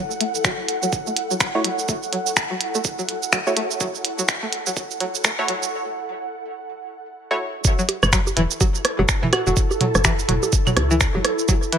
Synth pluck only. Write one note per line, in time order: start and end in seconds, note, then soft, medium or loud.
0.21 0.23 A3 medium
0.45 0.48 F#3 medium
0.83 0.85 F#3 medium
1.07 1.09 A3 medium
1.31 1.33 F#3 medium
1.65 1.68 F#3 medium
1.89 1.91 A3 medium
2.12 2.16 F#3 medium
2.51 2.53 F#3 medium
2.75 2.77 A3 medium
2.99 3.01 F#3 medium
3.33 3.36 F#3 medium
3.57 3.59 A3 medium
3.81 3.84 F#3 medium
4.19 4.21 F#3 medium
4.43 4.45 A3 medium
4.67 4.69 F#3 medium
5.00 5.04 F#3 medium
5.25 5.27 A3 medium
5.49 5.52 F#3 medium
7.79 7.81 F#3 medium
8.13 8.16 F#3 medium
8.37 8.42 E3 loud
8.61 8.64 F#3 medium
8.99 9.01 F#3 medium
9.23 9.27 E3 loud
9.47 9.49 F#3 medium
9.81 9.84 F#3 medium
10.05 10.10 E3 loud
10.29 10.32 F#3 medium
10.67 10.69 F#3 medium
10.91 10.95 E3 loud
11.15 11.17 F#3 medium
11.49 11.52 F#3 medium
11.73 11.78 E3 loud